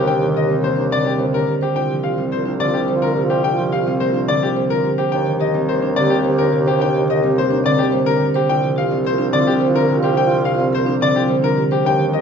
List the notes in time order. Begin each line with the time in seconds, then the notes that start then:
Already playing: D#2 C3 D3 D#3 G3 A#3 C4 G4 C5
0.07 D4 G5
0.15 G4
0.21 D#3 G4
0.35 G4 D#5
0.44 G4
0.48 G3 C4
0.62 A#3 A#4 C5
0.73 D4 G4
0.91 D3 C4 D5
1.03 D4 G4
1.19 G3 C5
1.32 D4 G4 A#4
1.47 C3 G4
1.61 C4 G4 C5
1.75 C2 D4 F4 G5
1.89 F3 G4
2.03 F4 G4 F5
2.18 G3 C4
2.32 A#3 F4 A#4 C5
2.46 D4
2.60 D3 C4 F4 D5
2.74 D4 G4
2.88 G3 C5
2.93 F4
3.02 D4 A#4
3.16 C3 G4
3.22 F4
3.30 C4 G4 C5
3.44 D4 G5
3.51 F4
3.58 F3 G4
3.72 G4 F5
3.81 F4
3.86 G3 C4
4.00 A#3 A#4 C5
4.10 F4
4.15 D4
4.28 D3 C4 D5
4.40 D4 F4 G4
4.56 G3 C5
4.69 D4 F4 A#4
4.84 C3 G4
4.98 C4 G4 C5
5.12 D#2 D4 G4 G5
5.26 D#3 G4
5.40 G4 D#5
5.54 G3 C4
5.68 A#3 G4 A#4 C5
5.82 D4
5.96 D3 C4 G4 D5
6.10 D4 G4
6.25 G3 C5
6.29 G4
6.38 D4 A#4
6.52 C3 G4
6.59 G4
6.66 C4 G4 C5
6.80 D4 G5
6.88 G4
6.95 D#3 G4
7.08 G4 D#5
7.18 G4
7.22 G3 C4
7.36 A#3 A#4 C5
7.47 D4 G4
7.64 D3 C4 D5
7.76 G4
7.92 G3 C5
8.05 D4 G4 A#4
8.21 C3 G4
8.34 C4 G4 C5
8.48 C2 D4 F4 G5
8.63 F3 G4
8.76 F4 G4 F5
8.91 G3 C4
9.04 A#3 F4 A#4 C5
9.18 D4
9.33 D3 C4 D5
9.37 F4
9.47 D4 G4
9.61 G3 C5
9.66 F4
9.75 D4 A#4
9.89 C3 G4
9.96 F4
10.03 C4 G4 C5
10.17 D4 G5
10.24 F4
10.30 F3 G4
10.44 G4 F5
10.53 F4
10.58 G3 C4
10.73 A#3 A#4 C5
10.83 D4 F4
11.01 D3 C4 D5
11.13 D4 F4 G4
11.28 G3 C5
11.42 D4 F4 A#4
11.57 C3 G4
11.71 C4 G4 C5
11.85 D#2 D4 G4 G5
11.99 D#3 G4
12.13 G4 D#5